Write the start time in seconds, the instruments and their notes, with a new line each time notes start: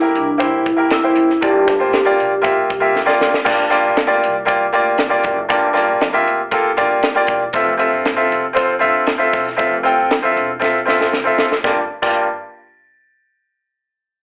Already playing: upright bass E2, grand piano C3, vibraphone E4
0.01 grand piano A#3 E4 G4 A#4
0.15 upright bass C2, vibraphone D4, closed hi-hat
0.38 grand piano A#3 E4 G4 C5, kick, closed hi-hat
0.42 vibraphone E4
0.66 upright bass A#1, kick, closed hi-hat
0.76 grand piano A#3 E4 G4 A#4
0.91 vibraphone E4, snare, closed hi-hat
1.03 grand piano A#3 E4 G4 C5
1.16 upright bass F#1, closed hi-hat
1.30 snare
1.41 upright bass G1, grand piano G2 A#3 F4 G4 D5, vibraphone G4, kick, closed hi-hat
1.68 kick, snare, closed hi-hat
1.79 upright bass A1, grand piano A#3 F4 G4 C5
1.93 upright bass G1, snare, closed hi-hat
2.05 grand piano A#3 F4 G4 D5
2.19 upright bass A#1, closed hi-hat
2.42 grand piano A#3 F4 G4 E5, kick, closed hi-hat
2.70 upright bass C2, kick, closed hi-hat
2.80 grand piano A#3 F4 G4 E5
2.95 upright bass D2, snare
3.05 grand piano A#3 F4 G4 D5, snare
3.21 upright bass F#1, snare
3.34 snare
3.44 upright bass G1, grand piano G2 A#3 F4 G4 D5, kick, crash
3.69 grand piano A#3 F4 G4 D5, snare, closed hi-hat
3.85 upright bass A#1
3.97 upright bass D2, snare, closed hi-hat
4.07 grand piano A#3 F4 G4 D5
4.23 upright bass C2, closed hi-hat
4.45 grand piano A#3 F4 G4 D5, kick, closed hi-hat
4.73 upright bass D2, grand piano A#3 F4 G4 D5, closed hi-hat
4.98 upright bass F1, snare, closed hi-hat
5.09 grand piano A#3 F4 G4 D5
5.23 upright bass F#1, kick, closed hi-hat
5.49 upright bass G1, grand piano G2 A#3 F4 G4 D5, kick, closed hi-hat
5.73 grand piano A#3 F4 G4 D5, snare, closed hi-hat
5.89 upright bass A#1
6.01 upright bass F2, snare, closed hi-hat
6.13 grand piano A#3 F4 G4 E5
6.27 upright bass F1, closed hi-hat
6.51 grand piano A#3 F4 G4 A4, kick, closed hi-hat
6.77 upright bass A#1, grand piano A#3 F4 G4 D5, kick, closed hi-hat
7.03 upright bass D#1, snare, closed hi-hat
7.15 grand piano A#3 F4 G4 D5
7.27 upright bass E1, kick, closed hi-hat
7.53 upright bass F1, grand piano C4 F4 A4 E5, kick, closed hi-hat
7.77 grand piano C4 F4 A4 E5, closed hi-hat
7.93 upright bass G1
8.05 upright bass A1, snare, closed hi-hat
8.16 grand piano C4 F4 A4 E5
8.31 upright bass F1, closed hi-hat
8.53 grand piano C4 F4 A4 C5, kick, closed hi-hat
8.79 upright bass G1, grand piano C4 F4 A4 E5, closed hi-hat
9.07 upright bass D#1, snare, closed hi-hat
9.18 grand piano C4 F4 A4 E5
9.32 upright bass E1, kick, open hi-hat
9.47 snare
9.57 upright bass F1, grand piano C4 F4 A4 E5, kick, closed hi-hat
9.83 grand piano C4 F4 A4 G5, closed hi-hat
9.98 upright bass A1
10.10 upright bass E2, snare, closed hi-hat
10.22 grand piano C4 F4 A4 E5
10.36 upright bass E1, closed hi-hat
10.60 grand piano C4 F4 A4 E5, kick, snare
10.85 upright bass A1, grand piano C4 F4 A4 E5, snare
11.01 snare
11.13 upright bass F1, snare
11.24 grand piano C4 F4 A4 E5
11.38 upright bass F#1, snare
11.52 snare
11.64 upright bass G1, grand piano G2 A#3 F4 G4 D5, kick, snare
12.02 upright bass G1, grand piano G2 A#3 F4 G4 D5, kick, crash